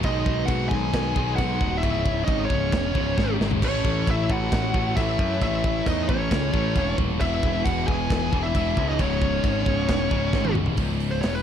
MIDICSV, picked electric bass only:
0, 0, Header, 1, 2, 480
1, 0, Start_track
1, 0, Key_signature, 4, "minor"
1, 0, Tempo, 448096
1, 42, Time_signature, 4, 2, 24, 8
1, 12237, End_track
2, 0, Start_track
2, 0, Title_t, "Picked electric bass"
2, 0, Program_c, 0, 34
2, 40, Note_on_c, 0, 35, 108
2, 250, Note_off_c, 0, 35, 0
2, 283, Note_on_c, 0, 35, 94
2, 491, Note_off_c, 0, 35, 0
2, 517, Note_on_c, 0, 35, 92
2, 728, Note_off_c, 0, 35, 0
2, 761, Note_on_c, 0, 35, 96
2, 970, Note_off_c, 0, 35, 0
2, 999, Note_on_c, 0, 35, 84
2, 1209, Note_off_c, 0, 35, 0
2, 1245, Note_on_c, 0, 35, 85
2, 1452, Note_off_c, 0, 35, 0
2, 1481, Note_on_c, 0, 35, 101
2, 1690, Note_off_c, 0, 35, 0
2, 1720, Note_on_c, 0, 27, 93
2, 1929, Note_off_c, 0, 27, 0
2, 1961, Note_on_c, 0, 25, 97
2, 2379, Note_off_c, 0, 25, 0
2, 2442, Note_on_c, 0, 32, 99
2, 2651, Note_off_c, 0, 32, 0
2, 2679, Note_on_c, 0, 25, 94
2, 2889, Note_off_c, 0, 25, 0
2, 2917, Note_on_c, 0, 28, 92
2, 3128, Note_off_c, 0, 28, 0
2, 3165, Note_on_c, 0, 25, 88
2, 3373, Note_off_c, 0, 25, 0
2, 3400, Note_on_c, 0, 32, 89
2, 3610, Note_off_c, 0, 32, 0
2, 3640, Note_on_c, 0, 32, 87
2, 3850, Note_off_c, 0, 32, 0
2, 3877, Note_on_c, 0, 33, 98
2, 4089, Note_off_c, 0, 33, 0
2, 4116, Note_on_c, 0, 33, 89
2, 4328, Note_off_c, 0, 33, 0
2, 4368, Note_on_c, 0, 33, 84
2, 4575, Note_off_c, 0, 33, 0
2, 4598, Note_on_c, 0, 33, 99
2, 4810, Note_off_c, 0, 33, 0
2, 4843, Note_on_c, 0, 33, 82
2, 5052, Note_off_c, 0, 33, 0
2, 5084, Note_on_c, 0, 33, 95
2, 5293, Note_off_c, 0, 33, 0
2, 5319, Note_on_c, 0, 33, 98
2, 5530, Note_off_c, 0, 33, 0
2, 5557, Note_on_c, 0, 42, 96
2, 5769, Note_off_c, 0, 42, 0
2, 5796, Note_on_c, 0, 33, 106
2, 6218, Note_off_c, 0, 33, 0
2, 6284, Note_on_c, 0, 40, 96
2, 6493, Note_off_c, 0, 40, 0
2, 6522, Note_on_c, 0, 33, 106
2, 6732, Note_off_c, 0, 33, 0
2, 6763, Note_on_c, 0, 37, 96
2, 6973, Note_off_c, 0, 37, 0
2, 7001, Note_on_c, 0, 33, 95
2, 7212, Note_off_c, 0, 33, 0
2, 7239, Note_on_c, 0, 28, 94
2, 7451, Note_off_c, 0, 28, 0
2, 7477, Note_on_c, 0, 27, 90
2, 7689, Note_off_c, 0, 27, 0
2, 7719, Note_on_c, 0, 28, 99
2, 7931, Note_off_c, 0, 28, 0
2, 7959, Note_on_c, 0, 28, 88
2, 8170, Note_off_c, 0, 28, 0
2, 8201, Note_on_c, 0, 28, 97
2, 8411, Note_off_c, 0, 28, 0
2, 8439, Note_on_c, 0, 28, 99
2, 8650, Note_off_c, 0, 28, 0
2, 8677, Note_on_c, 0, 28, 84
2, 8889, Note_off_c, 0, 28, 0
2, 8916, Note_on_c, 0, 28, 88
2, 9128, Note_off_c, 0, 28, 0
2, 9159, Note_on_c, 0, 28, 90
2, 9370, Note_off_c, 0, 28, 0
2, 9399, Note_on_c, 0, 37, 86
2, 9610, Note_off_c, 0, 37, 0
2, 9637, Note_on_c, 0, 25, 101
2, 10057, Note_off_c, 0, 25, 0
2, 10111, Note_on_c, 0, 32, 93
2, 10325, Note_off_c, 0, 32, 0
2, 10348, Note_on_c, 0, 25, 95
2, 10563, Note_off_c, 0, 25, 0
2, 10590, Note_on_c, 0, 28, 87
2, 10804, Note_off_c, 0, 28, 0
2, 10833, Note_on_c, 0, 25, 88
2, 11046, Note_off_c, 0, 25, 0
2, 11064, Note_on_c, 0, 32, 95
2, 11281, Note_off_c, 0, 32, 0
2, 11317, Note_on_c, 0, 25, 86
2, 11528, Note_off_c, 0, 25, 0
2, 11549, Note_on_c, 0, 25, 92
2, 12002, Note_off_c, 0, 25, 0
2, 12043, Note_on_c, 0, 28, 90
2, 12237, Note_off_c, 0, 28, 0
2, 12237, End_track
0, 0, End_of_file